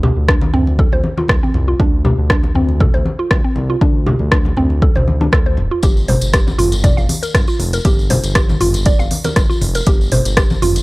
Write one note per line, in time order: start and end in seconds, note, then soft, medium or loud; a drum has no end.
0.00 0.12 D2 loud
0.00 0.16 G4 medium
0.00 muted conga soft
0.00 low conga loud
0.17 0.49 D2 medium
0.28 0.41 D4 medium
0.28 kick loud
0.28 cross-stick loud
0.41 muted conga medium
0.41 high conga loud
0.54 0.87 D2 loud
0.54 0.66 C4 loud
0.54 mid tom medium
0.67 muted conga soft
0.79 0.91 A4 loud
0.79 kick loud
0.92 1.01 D2 loud
0.92 1.03 C5 medium
0.92 muted conga medium
1.04 high conga medium
1.18 1.28 F4 medium
1.18 high conga medium
1.28 1.40 D2 medium
1.28 kick loud
1.28 cross-stick loud
1.28 muted conga soft
1.43 1.54 C4 medium
1.43 high conga medium
1.54 1.74 C2 loud
1.54 mid tom medium
1.54 muted conga soft
1.68 1.79 F4 medium
1.80 2.13 D2 loud
1.80 1.92 D4 loud
1.80 kick loud
1.80 muted conga soft
2.05 2.17 G4 medium
2.05 muted conga soft
2.05 low conga loud
2.18 2.51 D2 medium
2.30 2.43 D4 medium
2.30 kick loud
2.30 cross-stick loud
2.43 muted conga medium
2.43 high conga medium
2.55 2.89 D2 loud
2.55 2.68 C4 loud
2.55 mid tom medium
2.55 high conga medium
2.69 muted conga soft
2.80 2.93 A4 loud
2.80 kick loud
2.80 mid tom medium
2.80 low conga loud
2.94 3.03 D2 loud
2.94 3.05 C5 medium
2.94 muted conga medium
3.05 high conga loud
3.19 3.30 F4 medium
3.31 3.41 D2 loud
3.31 kick loud
3.31 cross-stick loud
3.31 muted conga soft
3.44 3.55 C4 medium
3.56 3.76 C2 loud
3.56 muted conga medium
3.70 3.81 F4 medium
3.81 4.15 D2 medium
3.81 3.94 D4 loud
3.81 kick loud
3.81 muted conga soft
4.06 4.19 G4 medium
4.06 muted conga soft
4.06 low conga loud
4.19 4.53 D2 medium
4.19 high conga medium
4.32 4.45 D4 medium
4.32 kick loud
4.32 cross-stick loud
4.45 muted conga medium
4.45 high conga medium
4.57 4.91 D2 medium
4.57 4.69 C4 loud
4.57 mid tom medium
4.70 muted conga soft
4.82 4.95 A4 loud
4.82 kick loud
4.95 5.28 D2 medium
4.95 5.06 C5 medium
4.95 muted conga medium
4.95 low conga medium
5.08 high conga loud
5.21 5.27 D4 medium
5.21 high conga loud
5.33 5.59 D2 loud
5.33 5.46 A4 medium
5.33 kick loud
5.33 cross-stick loud
5.46 5.57 C5 medium
5.46 high conga medium
5.57 5.68 D1 medium
5.57 mid tom medium
5.57 muted conga soft
5.71 5.82 F4 medium
5.83 6.17 G1 loud
5.83 5.95 G4 loud
5.83 kick loud
5.83 closed hi-hat soft
5.83 tambourine medium
5.83 muted conga medium
5.97 tambourine soft
6.08 6.21 C5 medium
6.08 open hi-hat medium
6.08 muted conga soft
6.08 low conga loud
6.21 6.54 G1 medium
6.21 closed hi-hat soft
6.21 tambourine medium
6.33 6.47 G4 medium
6.33 kick loud
6.33 cross-stick loud
6.33 closed hi-hat medium
6.33 tambourine medium
6.47 tambourine soft
6.47 muted conga soft
6.47 high conga medium
6.58 6.92 G1 loud
6.58 6.71 F4 loud
6.58 mid tom medium
6.58 open hi-hat medium
6.58 high conga medium
6.72 closed hi-hat soft
6.72 tambourine medium
6.72 muted conga soft
6.84 6.96 D5 loud
6.84 kick loud
6.84 closed hi-hat medium
6.84 mid tom medium
6.84 tambourine medium
6.84 low conga medium
6.97 7.06 G1 medium
6.97 7.08 F5 medium
6.97 tambourine soft
6.97 muted conga medium
7.09 open hi-hat medium
7.09 high conga medium
7.23 7.33 A#4 medium
7.23 closed hi-hat soft
7.23 tambourine medium
7.35 7.45 G1 medium
7.35 kick loud
7.35 cross-stick medium
7.35 closed hi-hat medium
7.35 tambourine medium
7.35 muted conga soft
7.47 7.59 F4 medium
7.47 tambourine soft
7.59 7.79 F1 loud
7.59 open hi-hat medium
7.59 muted conga soft
7.73 7.84 A#4 medium
7.73 closed hi-hat soft
7.73 tambourine medium
7.85 8.19 G1 loud
7.85 7.97 G4 loud
7.85 kick loud
7.85 closed hi-hat medium
7.85 tambourine medium
7.85 muted conga medium
7.99 tambourine soft
8.10 8.22 C5 medium
8.10 open hi-hat medium
8.10 muted conga soft
8.10 low conga loud
8.24 8.56 G1 medium
8.24 closed hi-hat soft
8.24 tambourine medium
8.35 8.48 G4 medium
8.35 kick loud
8.35 cross-stick loud
8.35 closed hi-hat medium
8.35 tambourine medium
8.49 tambourine soft
8.49 muted conga medium
8.49 high conga medium
8.60 8.94 G1 loud
8.60 8.73 F4 loud
8.60 mid tom loud
8.60 open hi-hat medium
8.74 closed hi-hat soft
8.74 tambourine medium
8.74 muted conga soft
8.86 8.98 D5 loud
8.86 kick loud
8.86 closed hi-hat medium
8.86 tambourine medium
8.99 9.08 G1 medium
8.99 9.10 F5 medium
8.99 tambourine soft
8.99 muted conga medium
9.11 open hi-hat medium
9.11 high conga medium
9.24 9.35 A#4 medium
9.24 closed hi-hat soft
9.24 tambourine medium
9.24 high conga medium
9.36 9.47 G1 loud
9.36 kick loud
9.36 cross-stick medium
9.36 closed hi-hat medium
9.36 tambourine medium
9.36 muted conga soft
9.50 9.60 F4 medium
9.50 tambourine soft
9.50 high conga medium
9.61 9.81 F1 loud
9.61 mid tom medium
9.61 open hi-hat medium
9.61 muted conga medium
9.75 9.86 A#4 medium
9.75 closed hi-hat soft
9.75 tambourine medium
9.87 10.20 G1 loud
9.87 9.99 G4 loud
9.87 kick loud
9.87 closed hi-hat medium
9.87 tambourine medium
9.87 muted conga medium
10.01 tambourine soft
10.12 10.24 C5 medium
10.12 open hi-hat medium
10.12 muted conga soft
10.12 low conga loud
10.25 10.58 G1 medium
10.25 closed hi-hat soft
10.25 tambourine medium
10.37 10.50 G4 medium
10.37 kick loud
10.37 cross-stick loud
10.37 closed hi-hat medium
10.37 tambourine medium
10.50 tambourine soft
10.50 muted conga medium
10.50 high conga medium
10.62 10.82 G1 loud
10.62 10.74 F4 loud
10.62 mid tom loud
10.62 open hi-hat medium
10.62 high conga medium
10.76 closed hi-hat soft
10.76 tambourine medium
10.76 muted conga soft